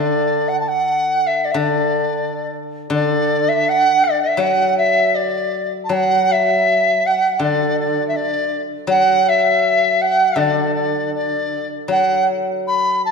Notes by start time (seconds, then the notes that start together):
Already playing: D3 D5
0.48 F#5
0.60 A5
0.68 F#5
1.26 E5
1.44 D5
1.51 D3 E5
1.57 D5
2.90 D3
2.94 D5
3.48 E5
3.68 F#5
4.04 D5
4.22 E5
4.37 F#3 F#5
4.77 E5
5.15 D5
5.84 A5
5.89 F#3 F#5
6.31 E5
7.06 F#5
7.39 D3 D5
7.79 D5
8.08 E5
8.16 D5
8.87 F#3 F#5
9.28 E5
10.01 F#5
10.36 D3 D5
10.75 D5
11.15 D5
11.88 F#3 F#5
12.67 B5
13.05 A5